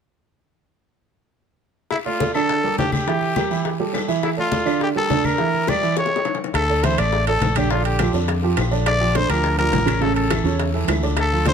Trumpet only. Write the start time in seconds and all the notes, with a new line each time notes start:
1.90 E4
2.06 F4
2.35 A4
2.78 G4
2.93 G4
4.24 E4
4.39 F4
4.83 G4
4.97 A4
5.25 A#4
5.69 D5
5.98 C#5
6.55 A4
6.84 C5
6.99 D5
7.28 A4
7.57 G4
7.71 F4
7.86 G4
8.87 D5
9.16 C5
9.30 A#4
9.58 A#4
10.02 A4
10.16 A4
11.20 A4
11.48 C5